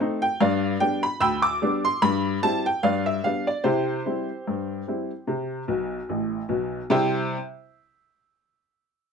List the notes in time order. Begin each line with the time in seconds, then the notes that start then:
0.00 A3 C4 D#4
0.22 G5
0.40 G2 B4 D5 F5
0.80 G3 B3 D4 G5
1.03 B5
1.21 D2 G5 B5 E6
1.42 D6
1.62 G3 B3 D4
1.85 C6
2.02 G2 B5
2.43 G3 C4 E4 A5
2.66 G5
2.83 G2 B4 D5 F5
3.06 E5
3.24 G3 B3 D4 F5
3.47 D5
3.64 C3 E4 G4 C5
4.06 G3 C4 E4
4.47 G2
4.88 G3 C4 E4
5.27 C3
5.68 B1 B2
6.09 A1 A2
6.49 B1 B2
6.90 C3 G3 E4 G4 C5 E5